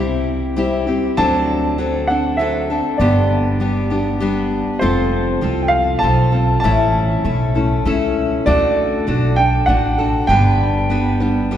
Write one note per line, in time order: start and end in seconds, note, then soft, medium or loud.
0.00 0.97 C2 medium
0.00 0.55 G3 medium
0.00 0.56 C4 medium
0.00 0.56 E4 medium
0.00 0.57 G4 medium
0.56 0.87 G3 medium
0.56 0.87 C4 medium
0.56 0.87 E4 medium
0.56 0.86 G4 medium
0.87 1.17 C4 soft
0.87 1.18 E4 soft
0.87 1.17 G4 medium
1.17 2.80 D2 medium
1.17 1.78 D3 medium
1.17 1.77 F#3 medium
1.17 1.78 C4 medium
1.17 1.79 D4 medium
1.17 1.78 A4 medium
1.17 2.11 A5 loud
1.78 2.08 F#3 medium
1.78 2.09 C4 medium
1.78 2.09 D4 medium
1.78 2.08 A4 medium
2.07 2.39 C4 soft
2.07 2.39 D4 soft
2.07 2.39 A4 medium
2.07 2.36 F#5 medium
2.37 2.69 F#3 medium
2.37 2.70 C4 medium
2.37 2.70 D4 medium
2.37 3.00 E5 medium
2.41 2.69 A4 medium
2.70 3.00 C4 soft
2.70 3.00 D4 soft
2.70 3.00 A4 soft
2.98 4.62 G1 medium
2.98 3.60 G2 medium
2.98 3.61 D3 medium
2.98 3.59 G3 medium
2.98 3.59 B3 medium
2.98 3.60 D4 medium
2.98 3.61 G4 medium
2.98 4.16 D5 medium
3.60 3.90 G3 medium
3.60 3.91 B3 medium
3.60 3.90 D4 medium
3.60 3.89 G4 medium
3.90 4.19 G3 soft
3.90 4.20 B3 soft
3.90 4.21 D4 soft
3.90 4.21 G4 medium
4.20 4.81 G3 medium
4.20 4.81 B3 medium
4.20 4.82 D4 medium
4.20 4.82 G4 medium
4.79 5.36 F1 medium
4.79 5.40 F3 medium
4.79 5.41 C4 medium
4.79 5.42 F4 medium
4.79 5.43 A4 medium
4.79 5.61 C5 medium
5.41 5.94 C2 medium
5.41 6.01 F3 medium
5.41 6.02 C4 medium
5.41 6.02 F4 medium
5.41 6.04 A4 medium
5.62 5.71 G5 medium
5.68 5.99 F5 medium
5.99 6.33 F3 medium
5.99 6.58 A5 loud
6.03 6.55 B1 medium
6.03 6.33 C4 medium
6.03 6.32 F4 medium
6.03 6.31 A4 medium
6.32 6.64 C4 soft
6.32 6.64 F4 soft
6.32 6.63 A4 medium
6.60 7.18 A1 medium
6.60 7.25 A2 medium
6.60 7.25 E3 medium
6.60 7.49 A5 medium
6.64 7.24 A3 medium
6.64 7.24 C#4 medium
6.64 7.24 E4 medium
6.64 7.26 A4 medium
7.24 7.76 B1 medium
7.24 7.55 A3 medium
7.24 7.55 C#4 medium
7.24 7.54 E4 medium
7.24 7.54 A4 medium
7.55 7.84 A3 soft
7.55 7.85 C#4 soft
7.55 7.85 E4 soft
7.55 7.85 A4 medium
7.85 8.37 C#2 medium
7.85 8.45 A3 medium
7.85 8.46 C#4 medium
7.85 8.47 E4 medium
7.85 8.46 A4 medium
8.46 9.01 D2 medium
8.46 9.07 D3 medium
8.46 9.06 A3 medium
8.46 9.07 D4 medium
8.46 9.07 F#4 medium
8.46 9.07 A4 medium
8.46 9.33 D5 medium
9.07 9.59 B1 medium
9.07 9.37 A3 medium
9.07 9.38 D4 medium
9.07 9.38 F#4 medium
9.07 9.37 A4 medium
9.36 9.68 D4 soft
9.36 9.68 A4 medium
9.36 9.65 G5 loud
9.66 10.20 A1 medium
9.66 9.98 A3 medium
9.66 9.99 D4 medium
9.66 9.98 F#4 medium
9.66 10.30 F#5 medium
9.70 9.97 A4 medium
9.98 10.29 D4 soft
9.98 10.29 F#4 soft
9.98 10.29 A4 medium
10.27 11.57 G1 medium
10.27 10.90 G2 medium
10.27 10.90 D3 medium
10.27 10.88 G3 medium
10.27 10.89 B3 medium
10.27 10.90 D4 medium
10.27 10.90 B4 medium
10.27 11.57 G5 loud
10.90 11.20 G3 medium
10.90 11.20 B3 medium
10.90 11.20 D4 medium
10.90 11.19 B4 medium
11.20 11.50 G3 soft
11.20 11.50 B3 soft
11.20 11.51 D4 soft
11.20 11.51 B4 medium
11.51 11.57 G3 medium
11.51 11.57 B3 medium
11.51 11.57 D4 medium
11.51 11.57 B4 medium